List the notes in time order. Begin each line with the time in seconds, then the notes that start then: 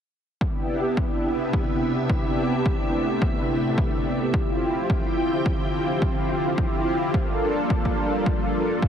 0.40 C3 B3 D4 E4 G4 E5, kick
0.97 kick
1.53 kick
2.09 B3 D4 E4 G4, kick
2.65 A3 B3 D4 E4 G4, kick
3.22 kick
3.78 kick
4.33 C4 E4 F4 G4, kick
4.62 D3 F3 C4 G5
4.89 C4 E4 F4 G4, kick
5.46 kick
6.02 kick
6.58 C4 E4 F4 G4, kick
7.13 G3 A#3 D4 F4 A4, kick
7.70 kick
7.85 kick
8.26 kick
8.82 A#3 D4 F4 A4, kick